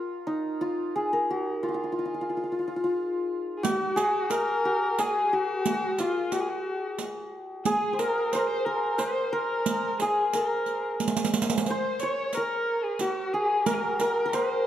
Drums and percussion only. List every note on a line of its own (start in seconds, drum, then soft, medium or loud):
3.65 riq medium
3.97 riq soft
4.31 riq medium
4.99 riq medium
5.66 riq medium
5.98 riq soft
6.32 riq soft
6.99 riq soft
7.65 riq medium
7.99 riq soft
8.33 riq soft
8.99 riq medium
9.66 riq medium
10.00 riq soft
10.33 riq medium
10.66 riq soft
11.00 riq medium
11.08 riq medium
11.17 riq medium
11.25 riq medium
11.34 riq medium
11.42 riq medium
11.50 riq medium
11.58 riq medium
11.66 riq medium
12.00 riq soft
12.33 riq soft
12.99 riq soft
13.66 riq medium
14.00 riq soft
14.33 riq medium